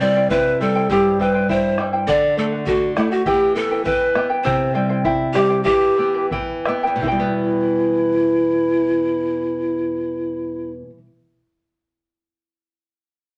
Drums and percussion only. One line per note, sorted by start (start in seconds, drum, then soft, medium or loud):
0.30 bombo low medium
0.89 bombo low medium
1.19 bombo low soft
1.49 bombo low medium
1.78 bombo rim medium
2.08 bombo low medium
2.67 bombo low medium
2.97 bombo rim medium
3.26 bombo low medium
3.86 bombo low medium
4.15 bombo rim medium
4.46 bombo low medium
5.04 bombo low medium
5.35 bombo rim soft
5.65 bombo low medium
6.31 bombo low medium
6.66 bombo rim medium
7.02 bombo low medium